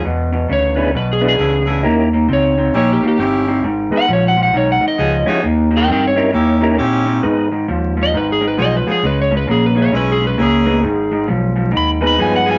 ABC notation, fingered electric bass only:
X:1
M:4/4
L:1/8
Q:"Swing" 1/4=133
K:G#m
V:1 name="Fingered electric bass" clef=bass
E,,2 =D,,2 B,,,2 C,,2 | D,,2 C,,2 A,,, z =G,,,2 | G,,, z A,,,2 B,,, z C,, z | D,,2 =G,,2 D,,2 A,,2 |
G,,2 D,,2 G,,,2 B,,, z | C,,2 A,,,2 B,,,2 C,,2 | G,,,2 B,,,2 D,,2 =G,,2 |]